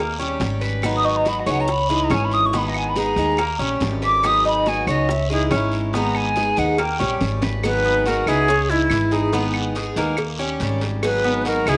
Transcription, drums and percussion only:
0.20 high bongo soft
0.40 high bongo medium
0.40 low bongo medium
0.40 short guiro medium
0.62 high bongo soft
0.62 short guiro medium
0.82 high bongo medium
0.82 long guiro medium
0.82 claves medium
1.26 high bongo medium
1.26 short guiro medium
1.47 short guiro medium
1.47 claves medium
1.68 high bongo medium
1.68 long guiro medium
2.10 high bongo medium
2.10 low bongo medium
2.10 short guiro medium
2.10 claves medium
2.31 short guiro medium
2.53 high bongo medium
2.53 long guiro medium
2.74 high bongo soft
2.74 claves medium
2.96 high bongo medium
2.96 short guiro medium
3.16 short guiro medium
3.37 high bongo medium
3.37 long guiro medium
3.37 claves medium
3.61 high bongo soft
3.80 high bongo medium
3.80 low bongo medium
3.80 short guiro medium
4.02 high bongo soft
4.02 short guiro medium
4.24 high bongo medium
4.24 long guiro medium
4.24 claves medium
4.66 high bongo medium
4.66 short guiro medium
4.87 short guiro medium
4.87 claves medium
5.09 high bongo medium
5.09 long guiro medium
5.51 high bongo medium
5.51 low bongo medium
5.51 short guiro medium
5.51 claves medium
5.72 short guiro medium
5.93 high bongo medium
5.93 long guiro medium
6.15 high bongo soft
6.15 claves medium
6.36 high bongo medium
6.36 short guiro medium
6.56 short guiro medium
6.78 high bongo medium
6.78 long guiro medium
6.78 claves medium
7.01 high bongo medium
7.21 low bongo medium
7.21 short guiro medium
7.42 low bongo loud
7.42 short guiro medium
7.63 cowbell loud
7.63 long guiro medium
7.63 claves medium
8.06 cowbell medium
8.06 short guiro medium
8.27 short guiro medium
8.27 claves medium
8.48 cowbell loud
8.48 long guiro medium
8.90 cowbell medium
8.90 short guiro medium
8.90 claves medium
9.11 short guiro medium
9.33 cowbell loud
9.33 long guiro medium
9.54 claves medium
9.76 cowbell medium
9.76 short guiro medium
9.96 cowbell medium
9.96 short guiro medium
10.17 cowbell loud
10.17 long guiro medium
10.17 claves medium
10.60 cowbell medium
10.60 short guiro medium
10.81 cowbell medium
10.81 short guiro medium
11.03 cowbell loud
11.03 long guiro medium
11.03 claves medium
11.45 cowbell medium
11.45 short guiro medium
11.67 short guiro medium
11.67 claves medium

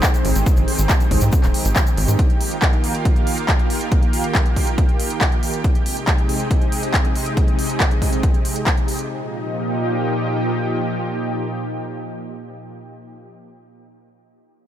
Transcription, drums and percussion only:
0.03 kick loud
0.03 clap loud
0.03 closed hi-hat soft
0.03 shaker medium
0.14 closed hi-hat soft
0.14 shaker soft
0.25 open hi-hat medium
0.35 closed hi-hat soft
0.35 shaker medium
0.46 kick loud
0.46 closed hi-hat soft
0.46 shaker medium
0.57 closed hi-hat soft
0.57 shaker soft
0.68 open hi-hat loud
0.78 closed hi-hat soft
0.78 shaker medium
0.89 kick loud
0.89 clap loud
0.89 closed hi-hat soft
0.89 shaker medium
1.00 closed hi-hat soft
1.00 shaker soft
1.11 kick medium
1.11 open hi-hat medium
1.21 closed hi-hat medium
1.21 shaker medium
1.32 kick loud
1.32 closed hi-hat soft
1.32 shaker medium
1.44 clap soft
1.44 closed hi-hat soft
1.44 shaker soft
1.54 open hi-hat loud
1.65 closed hi-hat soft
1.65 shaker medium
1.76 kick loud
1.76 clap loud
1.76 closed hi-hat soft
1.76 shaker medium
1.87 closed hi-hat soft
1.87 shaker soft
1.97 open hi-hat medium
2.08 closed hi-hat soft
2.08 shaker medium
2.19 kick loud
2.19 closed hi-hat soft
2.30 closed hi-hat soft
2.41 open hi-hat loud
2.51 closed hi-hat soft
2.62 kick loud
2.62 clap loud
2.62 closed hi-hat soft
2.73 closed hi-hat soft
2.84 open hi-hat medium
2.95 closed hi-hat soft
3.05 kick loud
3.05 closed hi-hat soft
3.16 closed hi-hat soft
3.27 open hi-hat loud
3.38 closed hi-hat soft
3.49 kick loud
3.49 clap loud
3.49 closed hi-hat soft
3.59 closed hi-hat soft
3.70 open hi-hat medium
3.81 closed hi-hat soft
3.92 kick loud
3.92 closed hi-hat medium
4.03 closed hi-hat soft
4.13 open hi-hat loud
4.24 closed hi-hat soft
4.35 kick loud
4.35 clap loud
4.35 closed hi-hat soft
4.46 closed hi-hat soft
4.56 kick medium
4.56 open hi-hat medium
4.67 closed hi-hat medium
4.78 kick loud
4.78 closed hi-hat medium
4.89 closed hi-hat soft
5.00 open hi-hat loud
5.10 closed hi-hat medium
5.21 kick loud
5.21 clap loud
5.21 closed hi-hat soft
5.32 closed hi-hat soft
5.43 open hi-hat medium
5.54 closed hi-hat soft
5.64 kick loud
5.64 closed hi-hat soft
5.75 closed hi-hat soft
5.86 open hi-hat medium
5.97 closed hi-hat medium
6.08 kick loud
6.08 clap loud
6.08 closed hi-hat medium
6.18 closed hi-hat soft
6.29 open hi-hat medium
6.40 closed hi-hat medium
6.51 kick loud
6.51 closed hi-hat medium
6.61 closed hi-hat soft
6.72 open hi-hat medium
6.83 closed hi-hat medium
6.94 kick loud
6.94 clap loud
6.94 closed hi-hat medium
7.05 closed hi-hat soft
7.16 open hi-hat medium
7.26 closed hi-hat medium
7.37 kick loud
7.37 closed hi-hat medium
7.48 closed hi-hat soft
7.59 open hi-hat loud
7.70 closed hi-hat medium
7.80 kick loud
7.80 clap loud
7.80 closed hi-hat medium
7.91 closed hi-hat soft
8.02 kick medium
8.02 open hi-hat medium
8.13 closed hi-hat medium
8.23 kick loud
8.23 closed hi-hat medium
8.34 closed hi-hat soft
8.45 open hi-hat loud
8.56 closed hi-hat medium
8.66 kick loud
8.66 clap loud
8.66 closed hi-hat medium
8.77 closed hi-hat soft
8.88 open hi-hat medium
8.99 closed hi-hat medium

